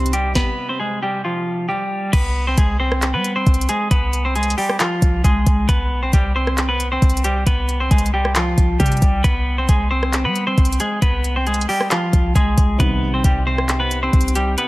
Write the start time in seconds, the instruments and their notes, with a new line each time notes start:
Already playing: 808-style bass C2, ambient pad C3 G4 D#5, felt piano C3 D#3 G3, clean electric guitar C4 C5
0.06 closed hi-hat
0.13 clean electric guitar G3 G4, closed hi-hat
0.35 clean electric guitar B3 B4, kick, snare
0.69 clean electric guitar C4 C5
0.80 clean electric guitar G#3 G#4
1.03 clean electric guitar G3 G4
1.25 clean electric guitar F3 F4
1.69 clean electric guitar G3 G4
2.13 808-style bass C2, clean electric guitar B3 B4, kick, closed hi-hat, crash
2.47 clean electric guitar C4 C5
2.58 808-style bass C2, clean electric guitar G#3 G#4, kick, closed hi-hat
2.80 clean electric guitar C4 C5
2.92 cross-stick
3.02 clap, closed hi-hat
3.14 808-style bass G3, clean electric guitar B3 B4
3.24 closed hi-hat
3.36 clean electric guitar C4 C5
3.47 808-style bass C2, kick, closed hi-hat
3.54 closed hi-hat
3.61 closed hi-hat
3.69 clean electric guitar G#3 G#4, closed hi-hat
3.91 808-style bass C2, clean electric guitar B3 B4, kick, closed hi-hat
4.13 closed hi-hat
4.25 clean electric guitar C4 C5
4.35 clean electric guitar G#3 G#4, closed hi-hat
4.43 closed hi-hat
4.50 closed hi-hat
4.58 clean electric guitar G3 G4, open hi-hat
4.69 cross-stick
4.80 clean electric guitar F3 F4, clap, closed hi-hat
5.02 808-style bass C2, kick, closed hi-hat
5.24 808-style bass C2, clean electric guitar G#3 G#4, kick, closed hi-hat
5.46 808-style bass C2, kick, closed hi-hat
5.69 808-style bass C2, clean electric guitar B3 B4, kick, closed hi-hat
5.91 808-style bass B1
6.03 clean electric guitar C4 C5
6.13 808-style bass C2, clean electric guitar G3 G4, kick, closed hi-hat
6.36 clean electric guitar C4 C5
6.47 cross-stick
6.58 clap, closed hi-hat
6.69 clean electric guitar B3 B4
6.80 closed hi-hat
6.92 clean electric guitar C4 C5
7.02 808-style bass C2, kick, closed hi-hat
7.10 closed hi-hat
7.17 closed hi-hat
7.24 clean electric guitar G3 G4, closed hi-hat
7.47 808-style bass C2, clean electric guitar B3 B4, kick, closed hi-hat
7.69 closed hi-hat
7.80 clean electric guitar C4 C5
7.91 808-style bass C2, clean electric guitar G#3 G#4, kick, closed hi-hat
7.98 closed hi-hat
8.06 closed hi-hat
8.14 clean electric guitar G3 G4
8.25 cross-stick
8.35 clean electric guitar F3 F4, clap, closed hi-hat
8.58 808-style bass C2, kick, closed hi-hat
8.80 808-style bass C3, clean electric guitar G3 G4, kick, closed hi-hat
8.86 closed hi-hat
8.92 closed hi-hat
8.97 closed hi-hat
9.02 808-style bass C2, kick, closed hi-hat
9.24 808-style bass C2, clean electric guitar B3 B4, kick, closed hi-hat
9.58 clean electric guitar C4 C5
9.69 808-style bass C2, clean electric guitar G#3 G#4, kick, closed hi-hat
9.91 clean electric guitar C4 C5
10.03 cross-stick
10.13 clap, closed hi-hat
10.25 808-style bass G3, clean electric guitar B3 B4
10.35 closed hi-hat
10.47 clean electric guitar C4 C5
10.58 808-style bass C2, kick, closed hi-hat
10.65 closed hi-hat
10.72 closed hi-hat
10.80 clean electric guitar G#3 G#4, closed hi-hat
11.02 808-style bass C2, clean electric guitar B3 B4, kick, closed hi-hat
11.24 closed hi-hat
11.36 clean electric guitar C4 C5
11.47 clean electric guitar G#3 G#4, closed hi-hat
11.54 closed hi-hat
11.61 closed hi-hat
11.69 clean electric guitar G3 G4, open hi-hat
11.81 cross-stick
11.91 clean electric guitar F3 F4, clap, closed hi-hat
12.13 808-style bass C2, kick, closed hi-hat
12.35 808-style bass C2, clean electric guitar G#3 G#4, kick, closed hi-hat
12.58 808-style bass C2, kick, closed hi-hat
12.78 808-style bass C2, felt piano C3 D#3 G3, clean electric guitar B3 B4, kick, closed hi-hat
13.02 808-style bass B1
13.14 clean electric guitar C4 C5
13.24 808-style bass C2, clean electric guitar G3 G4, kick, closed hi-hat
13.47 clean electric guitar C4 C5
13.58 cross-stick
13.69 clap, closed hi-hat
13.80 clean electric guitar B3 B4
13.91 closed hi-hat
14.03 clean electric guitar C4 C5
14.13 808-style bass C2, kick, closed hi-hat
14.21 closed hi-hat
14.28 closed hi-hat
14.35 clean electric guitar G3 G4, closed hi-hat
14.58 clean electric guitar B3 B4, closed hi-hat